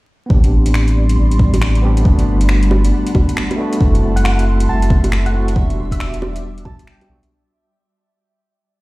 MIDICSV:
0, 0, Header, 1, 7, 480
1, 0, Start_track
1, 0, Key_signature, 1, "minor"
1, 0, Tempo, 437956
1, 334, Time_signature, 4, 2, 24, 8
1, 9658, End_track
2, 0, Start_track
2, 0, Title_t, "Soft synth lead"
2, 0, Program_c, 0, 80
2, 4561, Note_on_c, 0, 78, 92
2, 4635, Note_off_c, 0, 78, 0
2, 4645, Note_on_c, 0, 78, 95
2, 5130, Note_off_c, 0, 78, 0
2, 5142, Note_on_c, 0, 81, 89
2, 5393, Note_off_c, 0, 81, 0
2, 5766, Note_on_c, 0, 78, 90
2, 6014, Note_off_c, 0, 78, 0
2, 6489, Note_on_c, 0, 76, 91
2, 6735, Note_off_c, 0, 76, 0
2, 7290, Note_on_c, 0, 81, 94
2, 7514, Note_off_c, 0, 81, 0
2, 7528, Note_on_c, 0, 79, 95
2, 8012, Note_off_c, 0, 79, 0
2, 9658, End_track
3, 0, Start_track
3, 0, Title_t, "Ambient pad"
3, 0, Program_c, 1, 92
3, 343, Note_on_c, 1, 55, 77
3, 346, Note_on_c, 1, 83, 71
3, 348, Note_on_c, 1, 74, 66
3, 348, Note_on_c, 1, 84, 80
3, 2242, Note_off_c, 1, 74, 0
3, 2242, Note_off_c, 1, 84, 0
3, 2259, Note_on_c, 1, 81, 69
3, 2261, Note_on_c, 1, 78, 70
3, 4141, Note_off_c, 1, 55, 0
3, 4142, Note_off_c, 1, 83, 0
3, 4159, Note_off_c, 1, 78, 0
3, 4171, Note_on_c, 1, 66, 76
3, 4174, Note_on_c, 1, 84, 86
3, 4178, Note_on_c, 1, 76, 68
3, 6059, Note_off_c, 1, 81, 0
3, 6074, Note_off_c, 1, 66, 0
3, 6075, Note_off_c, 1, 84, 0
3, 6077, Note_off_c, 1, 76, 0
3, 6090, Note_on_c, 1, 74, 72
3, 6094, Note_on_c, 1, 76, 70
3, 6098, Note_on_c, 1, 55, 78
3, 6098, Note_on_c, 1, 86, 82
3, 7993, Note_off_c, 1, 74, 0
3, 7995, Note_off_c, 1, 76, 0
3, 7997, Note_off_c, 1, 55, 0
3, 7997, Note_off_c, 1, 86, 0
3, 9658, End_track
4, 0, Start_track
4, 0, Title_t, "Synth texture"
4, 0, Program_c, 2, 99
4, 4166, Note_on_c, 2, 76, 80
4, 8022, Note_off_c, 2, 76, 0
4, 9658, End_track
5, 0, Start_track
5, 0, Title_t, "Tine electric piano"
5, 0, Program_c, 3, 4
5, 286, Note_on_c, 3, 59, 70
5, 314, Note_on_c, 3, 60, 65
5, 346, Note_on_c, 3, 62, 67
5, 375, Note_on_c, 3, 67, 75
5, 546, Control_c, 3, 64, 127
5, 1969, Note_off_c, 3, 59, 0
5, 1983, Note_off_c, 3, 60, 0
5, 1994, Note_on_c, 3, 59, 78
5, 1998, Note_off_c, 3, 62, 0
5, 2004, Note_on_c, 3, 60, 73
5, 2013, Note_off_c, 3, 67, 0
5, 2020, Note_on_c, 3, 62, 74
5, 2033, Note_on_c, 3, 67, 85
5, 2204, Note_on_c, 3, 57, 75
5, 2222, Note_off_c, 3, 59, 0
5, 2228, Note_off_c, 3, 60, 0
5, 2235, Note_on_c, 3, 59, 69
5, 2236, Note_off_c, 3, 62, 0
5, 2242, Note_off_c, 3, 67, 0
5, 2263, Note_on_c, 3, 62, 67
5, 2267, Control_c, 3, 64, 0
5, 2294, Note_on_c, 3, 66, 80
5, 2491, Control_c, 3, 64, 127
5, 3888, Note_off_c, 3, 57, 0
5, 3903, Note_off_c, 3, 59, 0
5, 3906, Note_on_c, 3, 57, 77
5, 3917, Note_off_c, 3, 62, 0
5, 3924, Note_on_c, 3, 59, 74
5, 3933, Note_off_c, 3, 66, 0
5, 3942, Note_on_c, 3, 62, 75
5, 3953, Note_on_c, 3, 66, 87
5, 4122, Note_off_c, 3, 57, 0
5, 4135, Note_on_c, 3, 57, 76
5, 4147, Note_off_c, 3, 59, 0
5, 4156, Note_off_c, 3, 62, 0
5, 4162, Note_off_c, 3, 66, 0
5, 4163, Note_on_c, 3, 60, 70
5, 4187, Control_c, 3, 64, 0
5, 4193, Note_on_c, 3, 64, 66
5, 4222, Note_on_c, 3, 66, 82
5, 4381, Control_c, 3, 64, 127
5, 5813, Note_off_c, 3, 57, 0
5, 5827, Note_off_c, 3, 60, 0
5, 5828, Note_on_c, 3, 57, 81
5, 5842, Note_off_c, 3, 64, 0
5, 5845, Note_on_c, 3, 60, 70
5, 5857, Note_off_c, 3, 66, 0
5, 5858, Note_on_c, 3, 64, 72
5, 5875, Note_on_c, 3, 66, 86
5, 6054, Note_on_c, 3, 55, 78
5, 6060, Note_off_c, 3, 57, 0
5, 6068, Note_off_c, 3, 60, 0
5, 6074, Note_off_c, 3, 64, 0
5, 6081, Note_on_c, 3, 59, 69
5, 6083, Note_off_c, 3, 66, 0
5, 6107, Control_c, 3, 64, 0
5, 6109, Note_on_c, 3, 62, 68
5, 6139, Note_on_c, 3, 66, 82
5, 6310, Control_c, 3, 64, 127
5, 7733, Note_off_c, 3, 55, 0
5, 7746, Note_off_c, 3, 59, 0
5, 7747, Note_on_c, 3, 55, 75
5, 7760, Note_off_c, 3, 62, 0
5, 7765, Note_on_c, 3, 59, 67
5, 7775, Note_off_c, 3, 66, 0
5, 7779, Note_on_c, 3, 62, 67
5, 7794, Note_on_c, 3, 66, 80
5, 7916, Note_off_c, 3, 55, 0
5, 7925, Note_off_c, 3, 59, 0
5, 7931, Note_off_c, 3, 62, 0
5, 7939, Note_off_c, 3, 66, 0
5, 8030, Control_c, 3, 64, 0
5, 9658, End_track
6, 0, Start_track
6, 0, Title_t, "Sub bass"
6, 0, Program_c, 4, 38
6, 334, Note_on_c, 4, 33, 96
6, 560, Note_off_c, 4, 33, 0
6, 569, Note_on_c, 4, 33, 91
6, 1277, Note_off_c, 4, 33, 0
6, 1283, Note_on_c, 4, 33, 92
6, 2237, Note_off_c, 4, 33, 0
6, 2250, Note_on_c, 4, 31, 95
6, 2478, Note_off_c, 4, 31, 0
6, 2492, Note_on_c, 4, 31, 95
6, 3202, Note_off_c, 4, 31, 0
6, 3452, Note_on_c, 4, 31, 98
6, 3590, Note_off_c, 4, 31, 0
6, 4174, Note_on_c, 4, 30, 95
6, 4400, Note_off_c, 4, 30, 0
6, 4414, Note_on_c, 4, 30, 97
6, 5123, Note_off_c, 4, 30, 0
6, 5133, Note_on_c, 4, 30, 94
6, 6082, Note_off_c, 4, 30, 0
6, 6094, Note_on_c, 4, 28, 93
6, 6320, Note_off_c, 4, 28, 0
6, 6330, Note_on_c, 4, 28, 98
6, 7293, Note_on_c, 4, 35, 81
6, 7309, Note_off_c, 4, 28, 0
6, 7431, Note_off_c, 4, 35, 0
6, 7769, Note_on_c, 4, 35, 80
6, 7909, Note_off_c, 4, 35, 0
6, 9658, End_track
7, 0, Start_track
7, 0, Title_t, "Drums"
7, 329, Note_on_c, 9, 36, 113
7, 439, Note_off_c, 9, 36, 0
7, 480, Note_on_c, 9, 42, 31
7, 590, Note_off_c, 9, 42, 0
7, 721, Note_on_c, 9, 42, 57
7, 813, Note_on_c, 9, 26, 96
7, 831, Note_off_c, 9, 42, 0
7, 922, Note_off_c, 9, 26, 0
7, 961, Note_on_c, 9, 42, 41
7, 1071, Note_off_c, 9, 42, 0
7, 1199, Note_on_c, 9, 42, 55
7, 1309, Note_off_c, 9, 42, 0
7, 1441, Note_on_c, 9, 42, 44
7, 1528, Note_on_c, 9, 36, 95
7, 1551, Note_off_c, 9, 42, 0
7, 1638, Note_off_c, 9, 36, 0
7, 1684, Note_on_c, 9, 42, 52
7, 1684, Note_on_c, 9, 61, 34
7, 1771, Note_on_c, 9, 26, 105
7, 1794, Note_off_c, 9, 42, 0
7, 1794, Note_off_c, 9, 61, 0
7, 1881, Note_off_c, 9, 26, 0
7, 1922, Note_on_c, 9, 42, 29
7, 2032, Note_off_c, 9, 42, 0
7, 2159, Note_on_c, 9, 42, 53
7, 2249, Note_on_c, 9, 36, 122
7, 2269, Note_off_c, 9, 42, 0
7, 2359, Note_off_c, 9, 36, 0
7, 2397, Note_on_c, 9, 42, 31
7, 2506, Note_off_c, 9, 42, 0
7, 2639, Note_on_c, 9, 42, 57
7, 2727, Note_on_c, 9, 26, 98
7, 2748, Note_off_c, 9, 42, 0
7, 2836, Note_off_c, 9, 26, 0
7, 2878, Note_on_c, 9, 42, 42
7, 2969, Note_on_c, 9, 61, 58
7, 2988, Note_off_c, 9, 42, 0
7, 3079, Note_off_c, 9, 61, 0
7, 3118, Note_on_c, 9, 42, 59
7, 3228, Note_off_c, 9, 42, 0
7, 3360, Note_on_c, 9, 42, 44
7, 3451, Note_on_c, 9, 36, 102
7, 3452, Note_on_c, 9, 61, 36
7, 3470, Note_off_c, 9, 42, 0
7, 3560, Note_off_c, 9, 36, 0
7, 3562, Note_off_c, 9, 61, 0
7, 3606, Note_on_c, 9, 42, 52
7, 3692, Note_on_c, 9, 26, 109
7, 3715, Note_off_c, 9, 42, 0
7, 3802, Note_off_c, 9, 26, 0
7, 3845, Note_on_c, 9, 42, 30
7, 3845, Note_on_c, 9, 61, 35
7, 3955, Note_off_c, 9, 42, 0
7, 3955, Note_off_c, 9, 61, 0
7, 4084, Note_on_c, 9, 42, 53
7, 4171, Note_on_c, 9, 36, 127
7, 4194, Note_off_c, 9, 42, 0
7, 4281, Note_off_c, 9, 36, 0
7, 4328, Note_on_c, 9, 42, 30
7, 4438, Note_off_c, 9, 42, 0
7, 4568, Note_on_c, 9, 42, 55
7, 4658, Note_on_c, 9, 26, 101
7, 4677, Note_off_c, 9, 42, 0
7, 4767, Note_off_c, 9, 26, 0
7, 4812, Note_on_c, 9, 42, 44
7, 4922, Note_off_c, 9, 42, 0
7, 5045, Note_on_c, 9, 42, 58
7, 5155, Note_off_c, 9, 42, 0
7, 5287, Note_on_c, 9, 42, 44
7, 5374, Note_on_c, 9, 36, 106
7, 5397, Note_off_c, 9, 42, 0
7, 5483, Note_off_c, 9, 36, 0
7, 5524, Note_on_c, 9, 42, 53
7, 5524, Note_on_c, 9, 61, 32
7, 5613, Note_on_c, 9, 26, 111
7, 5634, Note_off_c, 9, 42, 0
7, 5634, Note_off_c, 9, 61, 0
7, 5722, Note_off_c, 9, 26, 0
7, 5767, Note_on_c, 9, 42, 30
7, 5876, Note_off_c, 9, 42, 0
7, 6008, Note_on_c, 9, 42, 53
7, 6093, Note_on_c, 9, 36, 127
7, 6118, Note_off_c, 9, 42, 0
7, 6203, Note_off_c, 9, 36, 0
7, 6249, Note_on_c, 9, 42, 30
7, 6358, Note_off_c, 9, 42, 0
7, 6481, Note_on_c, 9, 36, 63
7, 6489, Note_on_c, 9, 42, 56
7, 6578, Note_on_c, 9, 26, 99
7, 6591, Note_off_c, 9, 36, 0
7, 6598, Note_off_c, 9, 42, 0
7, 6688, Note_off_c, 9, 26, 0
7, 6726, Note_on_c, 9, 42, 42
7, 6818, Note_on_c, 9, 61, 57
7, 6836, Note_off_c, 9, 42, 0
7, 6927, Note_off_c, 9, 61, 0
7, 6967, Note_on_c, 9, 42, 54
7, 7077, Note_off_c, 9, 42, 0
7, 7208, Note_on_c, 9, 42, 40
7, 7292, Note_on_c, 9, 36, 103
7, 7298, Note_on_c, 9, 61, 35
7, 7318, Note_off_c, 9, 42, 0
7, 7402, Note_off_c, 9, 36, 0
7, 7408, Note_off_c, 9, 61, 0
7, 7446, Note_on_c, 9, 42, 52
7, 7534, Note_on_c, 9, 26, 109
7, 7555, Note_off_c, 9, 42, 0
7, 7644, Note_off_c, 9, 26, 0
7, 7687, Note_on_c, 9, 42, 29
7, 7687, Note_on_c, 9, 61, 34
7, 7797, Note_off_c, 9, 42, 0
7, 7797, Note_off_c, 9, 61, 0
7, 7925, Note_on_c, 9, 42, 53
7, 8034, Note_off_c, 9, 42, 0
7, 9658, End_track
0, 0, End_of_file